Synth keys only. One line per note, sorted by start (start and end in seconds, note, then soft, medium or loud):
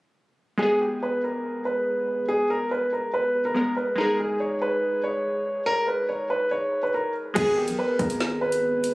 0.58 3.51 G#3 medium
0.58 3.52 B3 medium
0.62 3.53 G#4 medium
3.54 3.94 G#3 medium
3.54 3.98 B3 soft
3.54 3.98 A#4 medium
3.96 7.31 G#3 medium
3.96 7.32 D#4 medium
4.00 7.33 G#4 medium
7.34 8.94 G#3 medium
7.34 8.94 B3 medium
7.39 8.94 G#4 medium